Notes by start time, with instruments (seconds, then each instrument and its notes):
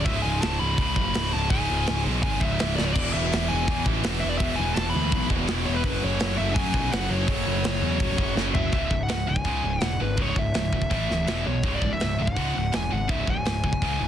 0.05 distorted electric guitar C#2 G#2 C#3, lead electric guitar E5, kick, open hi-hat
0.22 picked electric bass C#1, lead electric guitar G#5
0.41 picked electric bass C#1, lead electric guitar A5, snare, open hi-hat
0.59 picked electric bass C#1, lead electric guitar B5
0.78 distorted electric guitar C#2 G#2 C#3, picked electric bass C#2, kick, open hi-hat
0.95 picked electric bass F#1, lead electric guitar B5, kick
1.14 picked electric bass C#1, snare, open hi-hat
1.33 picked electric bass C#1, lead electric guitar A5
1.50 picked electric bass C#1, distorted electric guitar C#2 G#2 C#3, lead electric guitar G#5, kick, open hi-hat
1.70 picked electric bass C#1
1.87 picked electric bass C#1, snare, open hi-hat
2.06 picked electric bass B1
2.22 picked electric bass G#1, distorted electric guitar C#2 G#2 C#3, lead electric guitar G#5, kick, open hi-hat
2.40 picked electric bass C#1, lead electric guitar E5, kick
2.59 picked electric bass C#1, snare, open hi-hat
2.76 picked electric bass C#1, lead electric guitar D5, snare
2.85 lead electric guitar C#5
2.92 picked electric bass E1, overdriven electric guitar E2 B2 E3, distorted electric guitar E2, lead electric guitar D5, kick, crash
2.97 distorted electric guitar B2 E3, overdriven electric guitar G#3 B3 E4
3.13 picked electric bass E1, lead electric guitar E5
3.33 picked electric bass E1, snare, open hi-hat
3.48 picked electric bass E1, lead electric guitar G#5
3.67 distorted electric guitar E2 B2 E3, picked electric bass E2, kick, open hi-hat
3.84 picked electric bass A1, overdriven electric guitar E2 B2 E3 G#3 B3 E4, kick
4.02 picked electric bass E1, overdriven electric guitar E2 B2 E3 G#3 B3 E4, snare, open hi-hat
4.20 picked electric bass E1, lead electric guitar E5
4.29 lead electric guitar D5
4.38 picked electric bass E1, overdriven electric guitar E2 B2 E3 G#3 B3 E4, distorted electric guitar E2 B2, lead electric guitar E5, kick, open hi-hat
4.42 distorted electric guitar E3
4.56 picked electric bass E1, lead electric guitar G#5
4.74 picked electric bass E1, lead electric guitar A5, snare, open hi-hat
4.90 lead electric guitar B5
4.95 picked electric bass D2
5.12 picked electric bass B1, distorted electric guitar E2 B2 E3, kick, open hi-hat
5.29 picked electric bass E1, overdriven electric guitar E2 B2 E3 G#3 B3 E4, kick
5.47 picked electric bass E1, overdriven electric guitar E2 B2 E3 G#3 B3 E4, snare, open hi-hat
5.66 picked electric bass E1, lead electric guitar C#5
5.74 lead electric guitar B4
5.83 picked electric bass F#1, overdriven electric guitar F#2 C#3 F#3 A3 C#4 F#4, distorted electric guitar F#2 C#3 F#3, kick, open hi-hat
6.04 picked electric bass F#1, lead electric guitar C#5
6.20 picked electric bass F#1, snare, open hi-hat
6.38 picked electric bass F#1, lead electric guitar E5
6.54 picked electric bass F#2, distorted electric guitar F#2, lead electric guitar G#5, kick, open hi-hat
6.58 distorted electric guitar C#3 F#3
6.72 picked electric bass B1, overdriven electric guitar F#2 C#3 F#3 A3 C#4 F#4, kick
6.91 picked electric bass F#1, overdriven electric guitar F#2 C#3 F#3 A3 C#4 F#4, lead electric guitar F#5, snare, open hi-hat
7.10 picked electric bass F#1, lead electric guitar C#5
7.27 overdriven electric guitar F#2 C#3 F#3 A3 C#4 F#4, distorted electric guitar F#2 C#3 F#3, kick, open hi-hat
7.46 picked electric bass F#1
7.64 picked electric bass F#1, snare, open hi-hat
7.82 picked electric bass E2
8.00 picked electric bass C#1, distorted electric guitar F#2 C#3 F#3, kick, open hi-hat
8.18 picked electric bass F#1, overdriven electric guitar F#2 C#3 F#3 A3 C#4 F#4, kick
8.36 picked electric bass F#1, overdriven electric guitar F#2 C#3 F#3 A3 C#4 F#4, snare
8.54 picked electric bass F#1, lead electric guitar E5, floor tom
8.72 picked electric bass C#1, distorted electric guitar C#2 G#2 C#3, lead electric guitar E5, kick, open hi-hat
8.91 picked electric bass C#1, distorted electric guitar C#2 G#2, kick
9.03 lead electric guitar F#5
9.09 picked electric bass C#1, distorted electric guitar C#2 G#2, snare, open hi-hat
9.27 picked electric bass C#1, distorted electric guitar C#2 G#2, lead electric guitar G#5
9.36 kick
9.44 picked electric bass C#2, distorted electric guitar C#2 G#2 C#3, kick, open hi-hat
9.63 picked electric bass C#1, distorted electric guitar C#2 G#2
9.81 picked electric bass E1, distorted electric guitar C#2 G#2, lead electric guitar F#5, snare, open hi-hat
10.00 picked electric bass G#1, distorted electric guitar C#2 G#2, lead electric guitar B4
10.17 picked electric bass C#1, distorted electric guitar C#2 G#2 C#3, kick, open hi-hat
10.22 lead electric guitar C#5
10.36 picked electric bass C#1, distorted electric guitar C#2 G#2, lead electric guitar E5, kick
10.54 picked electric bass C#1, distorted electric guitar C#2 G#2, snare, open hi-hat
10.72 picked electric bass C#1, distorted electric guitar C#2 G#2, kick
10.82 kick
10.90 picked electric bass A1, distorted electric guitar A2 E3 A3, kick, open hi-hat
11.09 picked electric bass D1, distorted electric guitar A2 E3, snare
11.27 picked electric bass E1, distorted electric guitar E2 B2 E3, snare, open hi-hat
11.46 picked electric bass B1, distorted electric guitar E2 B2, lead electric guitar C#5
11.63 picked electric bass C#1, distorted electric guitar C#2 G#2 C#3, kick, open hi-hat
11.76 lead electric guitar D5
11.82 picked electric bass C#1, distorted electric guitar C#2 G#2, kick
11.93 lead electric guitar E5
12.00 picked electric bass C#1, distorted electric guitar C#2 G#2, snare, open hi-hat
12.19 picked electric bass C#1, distorted electric guitar C#2 G#2, lead electric guitar F#5
12.27 kick
12.36 distorted electric guitar C#2 G#2 C#3, picked electric bass C#2, kick, open hi-hat
12.54 picked electric bass C#1, distorted electric guitar C#2 G#2, lead electric guitar F#5
12.72 picked electric bass E1, distorted electric guitar C#2 G#2, lead electric guitar G#5, snare, open hi-hat
12.90 picked electric bass G#1, distorted electric guitar C#2 G#2, lead electric guitar F#5
13.08 picked electric bass C#1, distorted electric guitar C#2 G#2 C#3, lead electric guitar E5, kick, open hi-hat
13.27 picked electric bass C#1, distorted electric guitar C#2 G#2, lead electric guitar G#5, kick
13.45 picked electric bass C#1, distorted electric guitar C#2 G#2, snare, open hi-hat
13.63 picked electric bass C#1, distorted electric guitar C#2 G#2, kick
13.73 kick
13.82 picked electric bass C#2, distorted electric guitar C#2 G#2 C#3, kick, open hi-hat
14.00 picked electric bass C#1, distorted electric guitar C#2 G#2